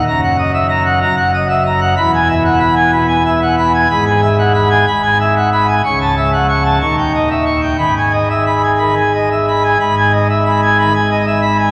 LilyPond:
<<
  \new Staff \with { instrumentName = "Pipe organ" } { \time 4/4 \key gis \minor \tempo 4 = 123 << { ais''8 r2. r8 | b''8 r2. r8 | b''8 r2. r8 | cis'''8 r4. cis'''8 r4. |
b''8 r2. r8 | b''8 r2. r8 | } \\ { \tuplet 3/2 { r8 fis''8 dis''8 e''8 ais''8 fis''8 ais''8 fis''8 dis''8 e''8 ais''8 fis''8 } | \tuplet 3/2 { r8 gis''8 e''8 fis''8 b''8 gis''8 b''8 gis''8 e''8 fis''8 b''8 gis''8 } | \tuplet 3/2 { r8 gis''8 e''8 fis''8 b''8 gis''8 b''8 gis''8 e''8 fis''8 b''8 gis''8 } | \tuplet 3/2 { r8 a''8 e''8 fis''8 cis'''8 a''8 r8 g''8 dis''8 e''8 cis'''8 g''8 } |
\tuplet 3/2 { r8 gis''8 dis''8 e''8 b''8 gis''8 b''8 gis''8 dis''8 e''8 b''8 gis''8 } | \tuplet 3/2 { r8 gis''8 dis''8 e''8 b''8 gis''8 b''8 gis''8 dis''8 e''8 b''8 gis''8 } | } >> }
  \new Staff \with { instrumentName = "Pipe organ" } { \clef bass \time 4/4 \key gis \minor << { fis,2 fis,2 | e,2 b,16 r4. r16 | gis,2 gis,2 | cis,2 dis,2 |
gis,2 dis16 r4. r16 | gis,2 dis16 r4. r16 | } \\ { fis,,2 fis,,2 | e,,1 | gis,,2 gis,,2 | cis,,2 dis,,2 |
gis,,1 | gis,,1 | } >> }
>>